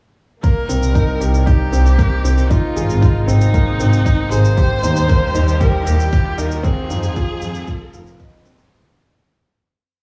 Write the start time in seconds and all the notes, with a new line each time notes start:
0.43 C3 G3 A#3 D#4 A#4, kick, riser, shaker
0.69 C2 C4, shaker
0.82 C2, shaker
0.95 D#4, kick, shaker
1.21 C2 G4, shaker
1.34 shaker
1.46 D#4 G4, kick, shaker
1.72 C2 C4, shaker
1.86 shaker
1.98 A#3, kick, shaker
2.24 C2 C4, shaker
2.38 shaker
2.49 C3 G#3 D#4 F4, kick, shaker
2.76 G#1 G#4, shaker
2.89 G#1, shaker
3.01 D#4, kick, shaker
3.26 G#1 C4 D#4, shaker
3.41 shaker
3.54 A#3, kick, shaker
3.80 G#1 C4, shaker
3.93 shaker
4.05 D#4, kick, shaker
4.30 G#1 G#4 C5, shaker
4.45 shaker
4.57 D#3 G3 G4, kick, shaker
4.83 D#2 D#4, shaker
4.96 D#2, shaker
5.08 A#3, kick, shaker
5.35 D#2 D#4, shaker
5.48 shaker
5.60 G4 A#4, kick, shaker
5.86 D#2 G4 A#4, shaker
6.00 shaker
6.13 G4, kick, shaker
6.38 D#2 D#4 A#4, shaker
6.51 shaker
6.63 G#3 C4 F4 G#4, kick, shaker
6.90 F2 D#4, shaker
7.03 F2, shaker
7.16 F4, kick, shaker
7.42 F2 G#4, shaker
7.55 shaker
7.67 F4, kick, shaker
7.93 F1 F4, shaker
8.07 shaker
8.20 D#5, kick, shaker
8.45 F2 C4, shaker
8.59 shaker